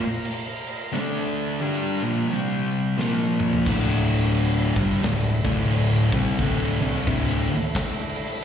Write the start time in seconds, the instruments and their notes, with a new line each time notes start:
Already playing: tonewheel organ F4 A#4 A#5
0.25 crash
0.67 crash
0.92 distorted electric guitar D3 A3 D4, tonewheel organ D4 A4 A5
1.61 distorted electric guitar G3 D4 G4, tonewheel organ F4 A#4 A#5
2.02 distorted electric guitar A#2 F3 A#3
2.29 distorted electric guitar C3 G3 C4, tonewheel organ G4 C5 C6
2.98 distorted electric guitar A#2 F3 A#3, tonewheel organ F4 A#4 A#5, snare
3.40 mid tom
3.53 floor tom
3.66 fingered electric bass D1, distorted electric guitar D2 A2 D3, tonewheel organ D3 A3 E4, kick, crash
4.08 crash
4.23 snare
4.35 crash
4.76 fingered electric bass G1, distorted electric guitar G2 D3 G3, kick, crash
5.02 fingered electric bass D1, distorted electric guitar D2 A2, snare, crash
5.44 fingered electric bass D1, distorted electric guitar D2 A2 D3, kick, crash
5.71 crash
6.12 fingered electric bass C2, distorted electric guitar C3 G3 C4, kick, crash
6.38 fingered electric bass D1, distorted electric guitar D2 A2 D3, kick, crash
6.80 fingered electric bass C2, distorted electric guitar C3 G3 C4, crash
6.95 snare
7.07 fingered electric bass D1, distorted electric guitar D2 A2 D3, kick, crash
7.49 crash
7.75 kick, snare, crash
8.16 crash